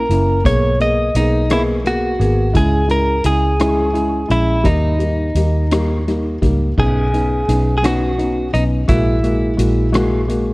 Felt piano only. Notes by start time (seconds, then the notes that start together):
0.10 A#3 C#4 E4
0.44 A#3 B3 G#4
0.80 A#3 B3 G#4
1.15 A#3 B3 G#4
1.50 A#3 B3 G#4
1.84 A#3 B3 G#4
2.19 A#3 B3 G#4
2.53 G#3 C#4 E4
2.88 G#3 C#4 E4
3.24 G#3 C#4 E4
3.60 G#3 C#4 E4
3.93 G#3 C#4 E4
4.28 G#3 C#4 E4
4.63 G3 A#3 D#4
4.99 G3 A#3 D#4
5.36 G3 A#3 D#4
5.72 G3 A#3 D#4
6.07 G3 A#3 D#4
6.41 G3 A#3 D#4
6.77 B3 C#4 D#4
7.13 B3 C#4 D#4
7.48 B3 C#4 D#4
7.83 B3 C#4 D#4
8.18 B3 C#4 D#4
8.53 B3 C#4 D#4
8.87 G#3 A#3 F#4
9.23 G#3 A#3 F#4
9.57 G#3 A#3 F#4
9.92 G#3 A#3 F#4
10.28 G#3 A#3 F#4